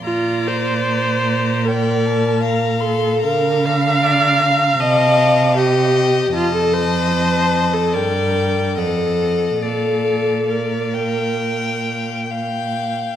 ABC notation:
X:1
M:4/4
L:1/16
Q:1/4=74
K:Bb
V:1 name="Violin"
b4 b4 g2 a2 b2 c'2 | b8 a4 g4 | a8 g4 _g4 | f4 f8 g4 |]
V:2 name="Violin"
d8 d4 f4 | f4 d2 f6 e4 | e8 d4 e4 | d4 d2 g6 f4 |]
V:3 name="Viola"
F2 c6 B6 A2 | B2 f6 e4 G4 | F A c4- c A B4 A4 | A4 B8 z4 |]
V:4 name="Cello" clef=bass
B,,16 | D,8 C,8 | F,,8 G,,4 F,,4 | B,,12- B,,3 z |]